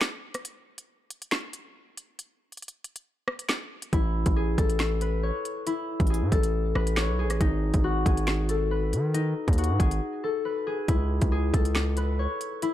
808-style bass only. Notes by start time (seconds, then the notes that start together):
3.93 A1
4.26 A1
4.58 A1
6.00 A1
6.22 A2
6.32 A1
6.75 A1
7.09 B1
7.25 A1
7.41 G#1
7.74 G#1
8.06 G#1
8.93 D#3
9.48 D#2
9.70 G#2
9.80 G#1
10.88 C#2
11.22 C#2
11.54 C#2